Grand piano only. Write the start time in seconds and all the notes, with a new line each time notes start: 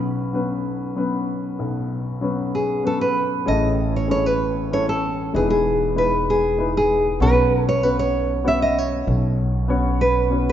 Already playing: B1 B2 F#3 B3 C#4 B4
0.33 F#3 B3 C#4 B4
0.96 F#3 B3 C#4 B4
1.59 B1 B2
2.21 F#3 B3 C#4 B4
2.83 F#3 B3 C#4 B4
3.46 A1 A2 C#4 E4 G#4 A4
4.08 C#4 E4 G#4 A4
4.71 A3 C#4 E4 A4
5.33 E2 E3 G#3 D#4 E4 B4
5.95 G#3 D#4 E4 B4
6.58 G#3 D#4 E4 B4
7.20 B1 B2 B3 C#4 F#4 C#5
7.82 B3 C#4 F#4 C#5
8.44 B3 C#4 F#4 C#5
9.07 B1 B2
9.68 B3 C#4 F#4 C#5
10.30 B3 C#4 F#4 C#5